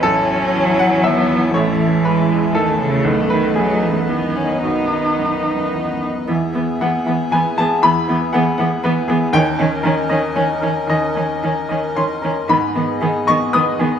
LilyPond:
<<
  \new Staff \with { instrumentName = "Harmonium" } { \time 3/4 \key e \major \tempo 4 = 117 << { e''2.~ | e''2. | dis''2.~ | dis''2. |
e''2.~ | e''2. | dis''2.~ | dis''2.~ |
dis''2. | } \\ { <cis' a''>2.~ | <cis' a''>2. | <b b'>2.~ | <b b'>2. |
<b gis'>2.~ | <b gis'>2. | <cis' ais'>2.~ | <cis' ais'>2. |
<b gis'>2. | } >> }
  \new Staff \with { instrumentName = "Grand piano" } { \time 3/4 \key e \major a'4. fis''8 e''4 | cis''4 b'4 a'4 | r8 b'8 gis'2 | fis'2 r4 |
r4 fis''4 gis''8 a''8 | b''4 fis''4. r8 | g''2. | dis''2 c'''4 |
b''4. cis'''8 dis'''4 | }
  \new Staff \with { instrumentName = "Grand piano" } { \time 3/4 \key e \major \tuplet 3/2 { a,,8 e,8 cis'8 e,8 e'8 e,8 dis,8 e,8 e'8 } | \tuplet 3/2 { a,,8 e,8 cis'8 e,8 e'8 e,8 dis,8 e,8 e'8 } | \tuplet 3/2 { b,,8 fis,8 b8 fis,8 dis'8 fis,8 e,8 fis,8 dis'8 } | \tuplet 3/2 { b,,8 fis,8 b8 fis,8 dis'8 fis,8 e,8 fis,8 dis'8 } |
e,8 b8 gis'8 fis''8 b'8 gis'8 | e,8 b8 gis'8 fis''8 b'8 gis'8 | dis,8 cis'8 ais'8 dis''8 cis''8 ais'8 | dis,8 cis'8 ais'8 dis''8 cis''8 ais'8 |
gis,8 b8 gis'8 dis''8 b'8 gis'8 | }
  \new Staff \with { instrumentName = "Viola" } { \time 3/4 \key e \major cis'2 b4 | a4 gis4 a4~ | a2 b8 cis'8 | dis'2~ dis'8 r8 |
b8 b8 b8 b8 b8 b8 | b8 b8 b8 b8 b8 b8 | cis'8 cis'8 cis'8 cis'8 cis'8 cis'8 | cis'8 cis'8 cis'8 cis'8 cis'8 cis'8 |
b8 b8 b8 b8 b8 b8 | }
  \new Staff \with { instrumentName = "Cello" } { \clef bass \time 3/4 \key e \major fis2. | e2 dis8 cis8 | dis8 dis8 fis8 e8 dis4 | dis2~ dis8 r8 |
e8 e8 e8 e8 e8 e8 | e8 e8 e8 e8 e8 e8 | dis8 dis8 dis8 dis8 dis8 dis8 | dis8 dis8 dis8 dis8 dis8 dis8 |
dis8 dis8 dis8 dis8 dis8 dis8 | }
>>